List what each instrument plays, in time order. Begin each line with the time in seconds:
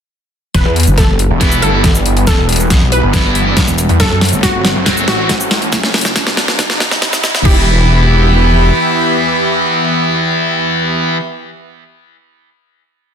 0.54 wobble bass E1, supersaw synth E3 G3 B3, synth pluck B4, kick, snare, closed hi-hat, riser
0.66 detuned saw bass E2
0.76 closed hi-hat
0.80 closed hi-hat
0.83 wobble bass F#1, closed hi-hat, shaker
0.98 synth pluck A4, kick, snare, closed hi-hat
1.19 closed hi-hat
1.30 detuned saw bass E1
1.41 distorted electric guitar E3 B3 E4, kick, snare, closed hi-hat
1.52 shaker
1.62 detuned saw bass G1, synth pluck A4, closed hi-hat
1.73 distorted electric guitar E3 B3 E4
1.84 kick, snare, closed hi-hat
1.95 shaker
2.06 detuned saw bass G1, closed hi-hat
2.17 closed hi-hat
2.27 wobble bass E1, synth pluck A4, kick, snare, closed hi-hat, shaker
2.38 detuned saw bass E1
2.49 closed hi-hat
2.52 closed hi-hat
2.56 closed hi-hat, shaker
2.70 detuned saw bass B1, kick, snare, closed hi-hat
2.81 wobble bass B1
2.92 synth pluck B4, closed hi-hat
3.03 detuned saw bass G1
3.13 distorted electric guitar E3 B3 E4, kick, snare, closed hi-hat
3.25 detuned saw bass G1
3.35 closed hi-hat
3.46 distorted electric guitar E3 B3 E4
3.57 kick, snare, closed hi-hat
3.68 wobble bass E1, shaker
3.78 closed hi-hat, shaker
3.89 detuned saw bass E2, closed hi-hat
4.00 wobble bass F#1, supersaw synth F#3 A3 C4, synth pluck A4, kick, snare, closed hi-hat
4.11 detuned saw bass F#2
4.21 snare, closed hi-hat
4.25 closed hi-hat
4.29 wobble bass G1, closed hi-hat, shaker
4.43 synth pluck F#4, kick, snare, closed hi-hat
4.65 snare, closed hi-hat
4.76 detuned saw bass F#1
4.86 distorted electric guitar F#3 C4 F#4, kick, snare, closed hi-hat
4.97 shaker
5.08 detuned saw bass A1, synth pluck F#4, snare, closed hi-hat
5.19 distorted electric guitar F#3 C4 F#4
5.29 kick, snare, closed hi-hat
5.40 shaker
5.51 detuned saw bass A1, snare, closed hi-hat
5.62 closed hi-hat
5.73 wobble bass F#1, kick, snare, closed hi-hat, shaker
5.83 wobble bass F#1, snare
5.94 snare, closed hi-hat
5.98 closed hi-hat
6.01 snare, closed hi-hat, shaker
6.16 wobble bass E1, kick, snare, closed hi-hat
6.27 wobble bass C2, snare
6.37 snare, closed hi-hat
6.48 wobble bass C2, snare
6.59 kick, snare, closed hi-hat
6.70 wobble bass F#1, snare
6.80 snare, closed hi-hat
6.91 wobble bass F#1, snare
7.02 kick, snare, closed hi-hat
7.13 wobble bass C2, snare, shaker
7.24 snare, closed hi-hat, shaker
7.35 snare, closed hi-hat
7.45 wobble bass E1, distorted electric guitar E3 B3 E4, supersaw synth E3 B3 G4 E5 B5, synth pluck G4, kick, crash